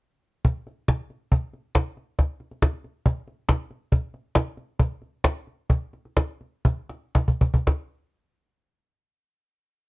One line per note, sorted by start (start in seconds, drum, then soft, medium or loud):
0.45 cajon bass medium
0.45 cajon slap soft
0.67 cajon slap soft
0.88 cajon bass medium
0.88 cajon slap medium
0.99 cajon slap soft
1.10 cajon slap soft
1.31 cajon bass medium
1.31 cajon slap soft
1.53 cajon slap soft
1.75 cajon bass medium
1.75 cajon slap medium
1.97 cajon slap soft
2.19 cajon bass medium
2.19 cajon slap soft
2.40 cajon slap soft
2.51 cajon slap soft
2.62 cajon bass medium
2.62 cajon slap medium
2.73 cajon slap soft
2.84 cajon slap soft
3.06 cajon bass medium
3.06 cajon slap soft
3.28 cajon slap soft
3.49 cajon bass medium
3.49 cajon slap medium
3.71 cajon slap soft
3.92 cajon bass medium
3.92 cajon slap soft
4.14 cajon slap soft
4.35 cajon bass medium
4.35 cajon slap medium
4.57 cajon slap soft
4.79 cajon bass medium
4.79 cajon slap soft
5.02 cajon slap soft
5.24 cajon bass medium
5.24 cajon slap medium
5.47 cajon slap soft
5.69 cajon bass medium
5.69 cajon slap soft
5.93 cajon slap soft
6.05 cajon slap soft
6.17 cajon bass soft
6.17 cajon slap medium
6.41 cajon slap soft
6.65 cajon bass medium
6.65 cajon slap soft
6.89 cajon slap soft
7.15 cajon bass medium
7.15 cajon slap medium
7.28 cajon bass medium
7.41 cajon bass medium
7.54 cajon bass medium
7.67 cajon bass medium
7.67 cajon slap medium